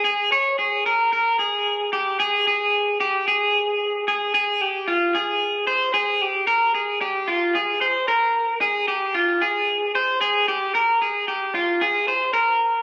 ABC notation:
X:1
M:4/4
L:1/8
Q:1/4=112
K:Fm
V:1 name="Clean electric guitar"
A d A B B A2 G | A A2 G A3 A | A G F A2 c A G | B A G F A c B2 |
A G F A2 c A G | B A G F A c B2 |]